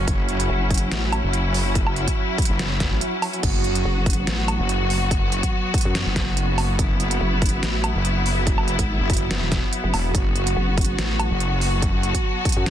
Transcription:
Already playing: string section F#3 C#4, ambient pad F#4 F#5 B5
0.08 wobble bass F#1, string section E4, kick, closed hi-hat
0.29 closed hi-hat
0.40 closed hi-hat
0.50 wobble bass F#1
0.71 kick, closed hi-hat
0.74 closed hi-hat
0.78 closed hi-hat
0.92 wobble bass A1, snare, closed hi-hat
1.12 closed hi-hat, low woodblock
1.24 wobble bass F#1
1.33 closed hi-hat
1.54 open hi-hat
1.75 kick, closed hi-hat
1.87 low woodblock
1.96 closed hi-hat
2.08 kick, closed hi-hat
2.38 kick, closed hi-hat
2.42 closed hi-hat
2.45 closed hi-hat
2.50 wobble bass F#1
2.59 snare, closed hi-hat
2.80 kick, snare, closed hi-hat
2.91 wobble bass A1
3.01 closed hi-hat
3.22 open hi-hat, low woodblock
3.33 closed hi-hat
3.43 wobble bass F#1, string section B3 F#4, kick, closed hi-hat, crash
3.54 ambient pad C#6
3.64 closed hi-hat
3.75 closed hi-hat
3.85 wobble bass F#1
4.06 kick, closed hi-hat
4.10 closed hi-hat
4.13 closed hi-hat
4.27 wobble bass A1, snare, closed hi-hat
4.48 closed hi-hat, low woodblock
4.59 wobble bass F#1
4.69 closed hi-hat
4.90 open hi-hat
5.11 kick, closed hi-hat
5.32 closed hi-hat
5.43 kick, closed hi-hat
5.74 kick, closed hi-hat
5.78 closed hi-hat
5.81 closed hi-hat
5.85 wobble bass F#2
5.95 snare, closed hi-hat
6.06 wobble bass F#1
6.16 kick, snare, closed hi-hat
6.37 closed hi-hat
6.58 open hi-hat, low woodblock
6.79 wobble bass F#1, string section E4, kick, closed hi-hat
7.00 closed hi-hat
7.11 closed hi-hat
7.21 wobble bass F#1
7.42 kick, closed hi-hat
7.46 closed hi-hat
7.49 closed hi-hat
7.63 wobble bass A1, snare, closed hi-hat
7.84 closed hi-hat, low woodblock
7.95 wobble bass F#1
8.05 closed hi-hat
8.26 open hi-hat
8.47 kick, closed hi-hat
8.58 low woodblock
8.68 closed hi-hat
8.79 wobble bass G#1, kick, closed hi-hat
9.00 wobble bass F#1
9.10 kick, closed hi-hat
9.13 closed hi-hat
9.17 closed hi-hat
9.31 wobble bass F#1, snare, closed hi-hat
9.42 wobble bass E1
9.52 kick, snare, closed hi-hat
9.73 closed hi-hat
9.84 wobble bass F#1
9.94 wobble bass E1, open hi-hat, low woodblock
10.15 wobble bass F#1, string section F#4, kick, closed hi-hat
10.25 ambient pad A5
10.36 closed hi-hat
10.47 closed hi-hat
10.57 wobble bass F#1
10.78 kick, closed hi-hat
10.81 closed hi-hat
10.85 closed hi-hat
10.98 wobble bass A1, snare, closed hi-hat
11.19 closed hi-hat, low woodblock
11.31 wobble bass F#1
11.40 closed hi-hat
11.61 open hi-hat
11.82 kick, closed hi-hat
12.03 closed hi-hat
12.15 kick, closed hi-hat
12.45 kick, closed hi-hat
12.49 closed hi-hat
12.52 closed hi-hat
12.57 wobble bass F#2
12.66 snare, closed hi-hat

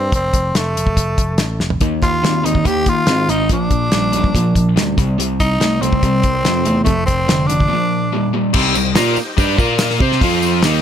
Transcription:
Already playing: picked electric bass G2, tenor saxophone C4
0.12 picked electric bass F1, tenor saxophone C4, kick, closed hi-hat
0.34 picked electric bass F1, kick, closed hi-hat
0.55 picked electric bass F1, tenor saxophone A3, snare, closed hi-hat
0.77 picked electric bass F1, closed hi-hat
0.87 kick
0.97 picked electric bass F1, kick, closed hi-hat
1.18 picked electric bass F1, kick, closed hi-hat
1.38 picked electric bass A1, snare, closed hi-hat
1.60 picked electric bass F1, snare
1.70 floor tom
1.81 picked electric bass D#2, distorted electric guitar D#3 A#3, kick, closed hi-hat
2.02 picked electric bass D#2, tenor saxophone F4, kick, closed hi-hat
2.23 picked electric bass D#2, distorted electric guitar D#3 C4, snare, closed hi-hat
2.44 picked electric bass D#2, distorted electric guitar D#3 C4, tenor saxophone D#4, closed hi-hat
2.55 kick
2.65 picked electric bass D#2, distorted electric guitar D#3 A#3, tenor saxophone G4, kick, closed hi-hat
2.86 picked electric bass D#2, tenor saxophone F4, kick, closed hi-hat
3.07 picked electric bass G#2, distorted electric guitar D#3 C4, snare, closed hi-hat
3.29 picked electric bass G#1, distorted electric guitar D#3 C4, tenor saxophone D#4, closed hi-hat
3.49 picked electric bass A#1, distorted electric guitar A#2 F3, tenor saxophone D4, kick, closed hi-hat
3.70 picked electric bass A#1, kick, closed hi-hat
3.92 picked electric bass A#1, distorted electric guitar A#2 G3, snare, closed hi-hat
4.12 picked electric bass A#1, distorted electric guitar A#2, overdriven electric guitar G3, closed hi-hat
4.17 distorted electric guitar G3
4.24 kick
4.34 picked electric bass A#1, distorted electric guitar A#2 F3, kick, closed hi-hat
4.55 picked electric bass A#1, kick, closed hi-hat
4.76 picked electric bass D2, distorted electric guitar A#2 G3, snare, closed hi-hat
4.97 picked electric bass C2, distorted electric guitar C3 G3, kick, closed hi-hat
5.19 picked electric bass C2, distorted electric guitar C3 G3, closed hi-hat
5.40 picked electric bass C2, tenor saxophone D#4, kick, closed hi-hat
5.61 picked electric bass C2, distorted electric guitar C3 A3, snare, closed hi-hat
5.81 picked electric bass C2, distorted electric guitar C3 A3, tenor saxophone C4, closed hi-hat
5.93 kick
6.03 picked electric bass C2, distorted electric guitar C3 G3, kick, closed hi-hat
6.23 picked electric bass C2, kick, closed hi-hat
6.45 picked electric bass F2, distorted electric guitar C3 A3, snare, closed hi-hat
6.65 picked electric bass E2, distorted electric guitar C3 A3, closed hi-hat
6.84 picked electric bass F1, distorted electric guitar F2 C3, tenor saxophone A3, kick, closed hi-hat
6.89 overdriven electric guitar F2
7.06 picked electric bass F1, tenor saxophone C4, kick, closed hi-hat
7.28 picked electric bass F1, distorted electric guitar F2 D3, snare, closed hi-hat
7.47 picked electric bass F1, distorted electric guitar F2 D3, tenor saxophone D4, closed hi-hat
7.60 kick
7.68 distorted electric guitar A#2 F3
7.73 overdriven electric guitar A#2
8.12 distorted electric guitar A#2 G3
8.33 distorted electric guitar A#2 G3
8.53 picked electric bass C2, distorted electric guitar C3 G3 C4, tonewheel organ D#4 G4 C5 D#5, kick, crash
8.75 picked electric bass C2, distorted electric guitar C3 G3, tambourine
8.95 picked electric bass A#2, distorted electric guitar A#3 F4 A#4, snare, open hi-hat, tambourine
9.16 muted distorted electric guitar stroke, muted picked electric bass stroke, muted overdriven electric guitar stroke, tambourine
9.37 picked electric bass G2, distorted electric guitar G3 D4 G4, kick, open hi-hat, tambourine
9.57 picked electric bass A#2, tonewheel organ A#3 F4 A#4 F5, distorted electric guitar A#3 F4 A#4, kick, tambourine
9.79 snare, open hi-hat, tambourine
9.90 snare
10.00 picked electric bass C3, distorted electric guitar C4 G4 C5, kick, tambourine
10.12 snare
10.19 picked electric bass F2, distorted electric guitar F3 C4 F4, tonewheel organ C4 F4 C5 F5, kick, open hi-hat
10.42 tambourine
10.62 picked electric bass D#2, distorted electric guitar D#3 A#3 D#4, tonewheel organ A#3 D#4 A#4 D#5, snare, open hi-hat, tambourine

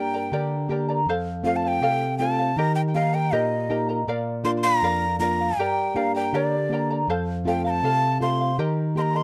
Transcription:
Already playing: nylon-string guitar G2 A#3 D4 G4, charango A#4 D5 G5 A#5, quena G5
0.14 charango A#4 D5 A#5
0.32 nylon-string guitar D3, charango G4 A#4 D5 G5 A#5
0.68 nylon-string guitar A#3 D4 G4, charango A#4 D5 G5 A#5
0.89 charango A#4 D5 A#5
1.06 nylon-string guitar F2, charango A4 C5
1.10 charango F5
1.43 nylon-string guitar A3 C4 F4, charango A4 C5, quena F5
1.48 charango F5
1.56 quena A5
1.63 charango C5 F5, quena A5
1.68 quena G5
1.81 nylon-string guitar C3, charango A4 C5 F5
2.18 nylon-string guitar A3 C4 F4, charango A4 C5 F5, quena A5
2.39 charango C5 F5
2.56 nylon-string guitar D#3, charango G4 A#4 D#5 G5 A#5, quena A#5
2.75 quena G5
2.94 nylon-string guitar A#3 D#4 G4, charango A#4 D#5 G5 A#5, quena F5
3.13 charango A#4 D#5 A#5, quena G5
3.32 nylon-string guitar A#2, charango G4 A#4 D#5 G5 A#5, quena D#5
3.70 nylon-string guitar A#3 D#4 G4, charango A#4 D#5 G5 A#5
3.89 charango A#4 D#5 A#5
4.07 nylon-string guitar A#2, charango A#4 D5 F5
4.44 nylon-string guitar A#3 D4 F4, charango A#4 D5 F5, quena C6
4.63 charango D5 F5, quena A#5
4.82 nylon-string guitar F2, charango A#4 D5 F5
5.19 nylon-string guitar A#3 D4 F4, charango A#4 D5 F5, quena A#5
5.41 charango D5 F5
5.57 nylon-string guitar G2, charango G4 A#4 D5 G5 A#5, quena G5
5.95 nylon-string guitar A#3 D4 G4, charango A#4 D5 G5 A#5, quena F5
6.15 charango A#4 D5 A#5, quena G5
6.33 nylon-string guitar D3, charango G4 A#4 D5 G5 A#5, quena D5
6.69 nylon-string guitar A#3 D4 G4, charango A#4 D5 G5
6.74 charango A#5
6.91 charango A#4 D5 A#5
7.08 nylon-string guitar F2, charango A4 C5 F5
7.44 nylon-string guitar A3 C4 F4, charango A4 C5 F5, quena G5
7.65 charango C5 F5, quena A#5
7.70 quena A5
7.83 nylon-string guitar C3, charango A4 C5 F5
8.19 nylon-string guitar A3 C4 F4, charango A4 C5 F5, quena C6
8.41 charango C5 F5
8.58 nylon-string guitar D#3, charango G4 A#4 D#5 G5 A#5
8.95 nylon-string guitar A#3 D#4 G4, charango A#4 D#5 G5 A#5, quena C6
9.02 quena A#5
9.15 charango A#4 D#5 A#5, quena C6

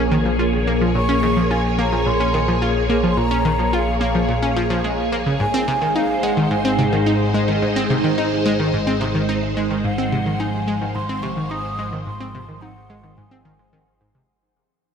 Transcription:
Already playing: synth drone A#1, string machine A#3 G#4 C#5
0.12 synth arpeggio sound D#3
0.26 synth arpeggio sound F3
0.39 synth arpeggio sound F4
0.67 synth arpeggio sound A#3
0.81 synth arpeggio sound F3
0.95 synth arpeggio sound A#2, flute C#6
1.09 synth arpeggio sound C#4
1.23 synth arpeggio sound D#3
1.37 synth arpeggio sound F3
1.51 synth arpeggio sound F4, flute G#5
1.79 synth arpeggio sound A#3, flute A#5
1.92 synth arpeggio sound F3
2.06 synth arpeggio sound A#2, flute C6
2.20 synth arpeggio sound C#4
2.34 synth arpeggio sound D#3
2.48 synth arpeggio sound F3
2.62 synth arpeggio sound F4
2.90 synth arpeggio sound A#3
3.04 synth arpeggio sound F3
3.11 flute C6
3.17 synth arpeggio sound A#2, flute A#5
3.31 synth arpeggio sound C#4
3.45 synth arpeggio sound D#3
3.59 synth arpeggio sound F3
3.73 synth arpeggio sound F4, flute F5
4.01 synth arpeggio sound A#3, flute F5
4.15 synth arpeggio sound F3
4.28 synth arpeggio sound A#2
4.42 synth arpeggio sound C#4
4.56 synth arpeggio sound F3
4.70 synth arpeggio sound F3
4.84 synth arpeggio sound G#3
5.12 synth arpeggio sound A#3
5.26 synth arpeggio sound C#3
5.40 synth drone G#1, synth arpeggio sound G#2, string machine G#3 D#4 C5, flute G#5
5.54 synth arpeggio sound C4
5.68 synth arpeggio sound C3
5.81 synth arpeggio sound D#3
5.95 synth arpeggio sound D#4, flute F5
6.23 synth arpeggio sound G#3, flute F#5
6.37 synth arpeggio sound D#3
6.51 synth arpeggio sound G#2, flute G#5
6.65 synth arpeggio sound C4
6.79 synth arpeggio sound C3
6.92 synth arpeggio sound D#3
7.06 synth arpeggio sound D#4
7.34 synth arpeggio sound G#3
7.48 synth arpeggio sound D#3
7.62 synth arpeggio sound G#2
7.76 synth arpeggio sound C4
7.90 synth arpeggio sound C3
8.04 synth arpeggio sound D#3
8.18 synth arpeggio sound D#4
8.46 synth arpeggio sound G#3
8.60 synth arpeggio sound D#3
8.73 synth arpeggio sound G#2
8.87 synth arpeggio sound C4
9.01 synth arpeggio sound C3
9.15 synth arpeggio sound D#3
9.29 synth arpeggio sound D#4
9.57 synth arpeggio sound G#3
9.71 synth arpeggio sound D#3
9.84 synth arpeggio sound G#2, string machine F3, flute F#5
9.98 synth arpeggio sound C4
10.12 synth arpeggio sound C3
10.26 synth arpeggio sound D#3
10.40 synth arpeggio sound D#4, flute G#5
10.68 synth arpeggio sound G#3
10.81 synth arpeggio sound D#3
10.95 synth arpeggio sound G#2, flute C6
11.09 synth arpeggio sound C4
11.23 synth arpeggio sound C3, flute C#6
11.37 synth arpeggio sound D#3
11.50 synth arpeggio sound D#4, flute D#6
11.79 synth arpeggio sound G#3
11.93 synth arpeggio sound D#3
12.06 synth arpeggio sound G#2, flute C6
12.20 synth arpeggio sound C4
12.35 synth arpeggio sound C3
12.49 synth arpeggio sound D#3
12.61 synth arpeggio sound D#4, flute F#5
12.90 synth arpeggio sound G#3
13.04 synth arpeggio sound D#3
13.17 synth arpeggio sound G#2, flute G#5
13.31 synth arpeggio sound C4
13.45 synth arpeggio sound D#3
13.59 synth arpeggio sound G#2
13.73 synth arpeggio sound D#3
14.01 synth arpeggio sound G#2
14.15 synth arpeggio sound C3

